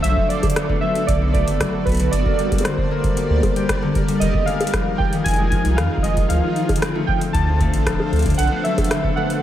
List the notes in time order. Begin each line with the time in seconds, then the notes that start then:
Already playing: A3 C4 A4
0.02 B1 F#3 B3 F#4 D5 E5, closed hi-hat
0.17 kick
0.29 D5, closed hi-hat
0.43 D3, kick, closed hi-hat, high bongo
0.50 closed hi-hat
0.56 B3, cross-stick, closed hi-hat
0.69 A3, kick
0.81 F#3 E5
0.95 closed hi-hat
1.07 B1 D3 D5, kick, closed hi-hat
1.22 B3
1.33 A3 D5, kick, closed hi-hat
1.48 F#1, closed hi-hat
1.60 F#1 F#3, kick, cross-stick, closed hi-hat
1.85 B1 B4, kick, closed hi-hat
1.89 closed hi-hat
1.92 closed hi-hat
1.95 closed hi-hat
1.97 closed hi-hat
2.00 D3, closed hi-hat
2.11 G1 G3 D4 G4 A#4 D5, closed hi-hat
2.26 A#3, kick
2.37 G3 D5, closed hi-hat
2.52 kick, closed hi-hat, high bongo
2.58 closed hi-hat, high bongo
2.64 D3 C5, cross-stick, closed hi-hat
2.69 high bongo
2.78 D4, kick
2.91 A#3
3.04 kick, closed hi-hat
3.17 G3, closed hi-hat
3.30 D2
3.43 kick, closed hi-hat, high bongo
3.56 G4, closed hi-hat
3.69 kick, cross-stick, closed hi-hat
3.82 D3
3.95 A#3, kick, closed hi-hat
4.08 G3, closed hi-hat
4.20 F1 D#3 D#4 F4 G#4 D#5, closed hi-hat
4.34 C4, kick
4.46 G#3 F5, closed hi-hat
4.61 closed hi-hat, high bongo
4.67 closed hi-hat
4.73 F3, kick, cross-stick, closed hi-hat
4.98 G5, kick
5.13 D#3, closed hi-hat
5.24 F1 C4 G#5, kick, closed hi-hat
5.28 closed hi-hat
5.31 closed hi-hat
5.34 closed hi-hat
5.36 G#3, closed hi-hat
5.50 F3 G#5, kick, closed hi-hat
5.65 C2, closed hi-hat
5.76 F2 D#3 F5, cross-stick, closed hi-hat
5.91 C4
5.97 kick
6.03 F1 G#3 D#5, closed hi-hat
6.17 kick, closed hi-hat
6.29 D2 F3 D4 A4 C5 F5, closed hi-hat
6.56 closed hi-hat
6.69 D3, kick, closed hi-hat, high bongo
6.76 closed hi-hat
6.82 C4, cross-stick, closed hi-hat
6.95 A3
7.07 F3 G5, kick
7.21 closed hi-hat
7.33 D2 D3 A5, kick, closed hi-hat
7.47 C4
7.60 A3, kick, closed hi-hat
7.74 A1, closed hi-hat
7.86 D1 F3, kick, cross-stick, closed hi-hat
8.00 high bongo
8.13 D2, closed hi-hat
8.16 closed hi-hat
8.19 closed hi-hat
8.22 D3, kick, closed hi-hat
8.26 closed hi-hat
8.30 closed hi-hat
8.34 F#5, closed hi-hat
8.39 B1 B3 F#4 D5, closed hi-hat
8.43 closed hi-hat
8.47 closed hi-hat
8.52 A3
8.64 F#3 E5, closed hi-hat
8.78 kick, closed hi-hat, high bongo
8.84 closed hi-hat
8.91 D3, cross-stick, closed hi-hat
9.04 B3, kick
9.16 A3 F#5
9.30 closed hi-hat